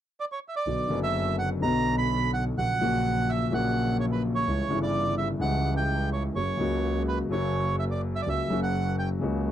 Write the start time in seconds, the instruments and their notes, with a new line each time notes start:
0.20 bandoneon D5
0.32 bandoneon C#5
0.48 bandoneon E5
0.56 bandoneon D5
0.66 grand piano B1 B2 D3 F#3 B3 F#4, double bass B1
0.88 grand piano F#1 F#2 D3 F#3 B3 F#4, double bass F#1
1.03 bandoneon E5
1.39 bandoneon F#5
1.60 double bass B1, grand piano B1 B2 D3 F#3 B3, bandoneon A#5
1.64 grand piano F#4
1.98 bandoneon B5
2.34 bandoneon F#5
2.57 grand piano A#1 A#2 C#3 F#3 A#3 F#4, double bass A#1, bandoneon F#5
2.79 double bass A#1, grand piano A#1 A#2 C#3 F#3 A#3 F#4
3.29 bandoneon E5
3.50 double bass A#1, grand piano A#1 A#2 C#3 F#3 A#3 F#4, bandoneon F#5
4.00 bandoneon C#5
4.12 bandoneon B4
4.35 bandoneon C#5
4.46 double bass C#2, grand piano C#2 C#3 E3 G3 E4
4.68 grand piano G1 G2 C#3 E3 G3, double bass G1
4.72 grand piano E4
4.83 bandoneon D5
5.18 bandoneon E5
5.39 double bass C#2, grand piano C#2 C#3 E3 G3, bandoneon F#5
5.43 grand piano E4
5.77 bandoneon G5
6.13 bandoneon C#5
6.36 double bass F#1, grand piano F#2 C#3 F#3 A#3 F#4, bandoneon C#5
6.58 double bass C#2, grand piano C#2 C#3 F#3 A#3 F#4
7.08 bandoneon B4
7.29 double bass F#1, grand piano F#2 C#3 F#3 A#3 F#4, bandoneon C#5
7.79 bandoneon E5
7.91 bandoneon D5
8.15 bandoneon E5
8.22 grand piano C#3, bandoneon D5
8.26 double bass C#2, grand piano C#2 F#3 A#3 F#4, bandoneon E5
8.48 double bass F#1, grand piano F#2 C#3 F#3 A#3
8.52 grand piano F#4
8.63 bandoneon F#5
8.99 bandoneon G5
9.19 grand piano C#2 C#3 F#3 A#3, double bass C#2
9.23 grand piano F#4